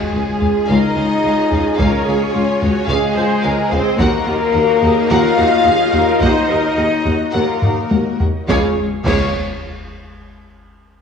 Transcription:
Already playing: C#3 G#3 C#4 F4 F#4 G#4 G#5
0.13 C#2 G#4 F5
0.41 C#2 F5, taiko low
0.68 C#2 D#4 A#4 D#5 F5
0.96 C#2 G#4 F5
1.23 C#2 F5
1.51 C#2 F5, taiko low
1.79 C#2 C#4 A#4 C#5 F5, taiko
2.05 C#2 G#4 F5
2.33 C#2 F4 F5
2.61 C#2 F#4 F5, taiko low
2.88 C#2 G#3 G#4 F5
3.16 C#2 C5 F5
3.43 C#2 A#4 F5
3.70 C#2 C4 G#4 C5 F5, taiko low
3.98 D#2 F#3 A#3 D#4 F#4 A#4 D#5 F#5, taiko
4.25 D#2 F4 F#5
4.53 D#2 F#4 F#5
4.81 D#2 G#4 F#5, taiko low
5.09 D#2 F4 A#4 F5 F#5
5.37 D#2 F#4 F#5
5.65 D#2 G#4 F#5
5.91 D#2 A#4 F#5, taiko low
6.20 D#2 D#4 C5 D#5 F#5, taiko
6.46 D#2 A#4 F#5
6.76 D#2 G#4 F#5
7.05 D#2 F#4 F#5, taiko low
7.33 D#2 A#3 F4 A#4 F#5
7.61 D#2 D#4 F#5, taiko low-mid
7.89 D#2 F#4 F#5, taiko high
8.20 D#2 F#5, taiko low
8.48 C#2 C#3 G#3 C#4 F4 G#4 C#5 F5, concert bass drum, snare, taiko
9.06 C#2 C#3 G#4 C#5 F5, concert bass drum, taiko, crash

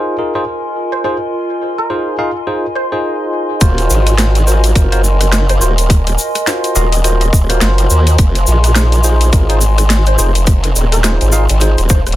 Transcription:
Already playing: D#4 F4 G#4 A#4 C5 D#5 G#5 C6
0.18 D#4 F4 G#4 A#4
0.35 D#4 F4 G#4 C5
0.92 C5
1.04 D#4 F4 G#4 C5
1.78 A#4
1.90 D#4 F4 G#4 C5
2.19 D#4 F4 G#4 F5
2.47 D#4 F4 G#4 C5
2.75 C5
2.92 D#4 F4 G#4 C5
3.61 D#1 F4 F#4 A#4 C5, kick, closed hi-hat, shaker
3.78 closed hi-hat, shaker
3.90 G#1, shaker
4.07 cross-stick, closed hi-hat, shaker
4.18 F4 F#4 A#4 C5, snare, closed hi-hat, shaker
4.35 closed hi-hat, shaker
4.47 F4 F#4 A#4 C5, shaker
4.64 closed hi-hat, shaker
4.75 F#1 F4 F#4 A#4 C5, kick, closed hi-hat, shaker
4.92 F4 F#4 A#4 C5, closed hi-hat, shaker
5.04 shaker
5.21 cross-stick, closed hi-hat, shaker
5.32 snare, closed hi-hat, shaker
5.49 C5, cross-stick, closed hi-hat, shaker
5.61 D#1 F4 F#4 A#4 C5, shaker
5.78 closed hi-hat, shaker
5.90 kick, closed hi-hat, shaker
6.07 closed hi-hat, shaker
6.18 shaker
6.35 cross-stick, closed hi-hat, shaker
6.47 F4 F#4 A#4 C5, snare, closed hi-hat, shaker
6.64 closed hi-hat, shaker
6.75 D#1 F4 F#4 A#4 D#5 F5, shaker
6.92 D#5, closed hi-hat, shaker
7.04 F4 F#4 A#4 C5 D#5, closed hi-hat, shaker
7.21 D#5, closed hi-hat, shaker
7.33 D#1, kick, shaker
7.49 F4 F#4 A#4 C5, cross-stick, closed hi-hat, shaker
7.61 F#1, snare, closed hi-hat, shaker
7.78 closed hi-hat, shaker
7.90 D#2, shaker
8.07 closed hi-hat, shaker
8.18 F1, kick, closed hi-hat, shaker
8.35 closed hi-hat, shaker
8.47 A#1, shaker
8.64 cross-stick, closed hi-hat, shaker
8.75 D#4 F4 G#4 C5, snare, closed hi-hat, shaker
8.92 closed hi-hat, shaker
9.04 D#4 F4 G#4 C5, shaker
9.21 closed hi-hat, shaker
9.33 G#1 D#4 F4 G#4 A#4, kick, closed hi-hat, shaker
9.49 D#4 F4 G#4 C5, closed hi-hat, shaker
9.61 shaker
9.78 cross-stick, closed hi-hat, shaker
9.90 snare, closed hi-hat, shaker
10.06 C5, cross-stick, closed hi-hat, shaker
10.18 F1 D#4 F4 G#4 C5, shaker
10.35 closed hi-hat, shaker
10.47 kick, closed hi-hat, shaker
10.64 closed hi-hat, shaker
10.76 D#1, shaker
10.92 A#4, cross-stick, closed hi-hat, shaker
11.04 D#4 F4 G#4 C5, snare, closed hi-hat, shaker
11.21 G#1, closed hi-hat, shaker
11.32 D#4 F4 G#4 F5, shaker
11.49 G#1, closed hi-hat, shaker
11.61 D#4 F4 G#4 C5, closed hi-hat, shaker
11.78 D#1, closed hi-hat, shaker
11.89 F1 C5, kick, shaker
12.07 D#1, cross-stick, closed hi-hat, shaker
12.12 closed hi-hat

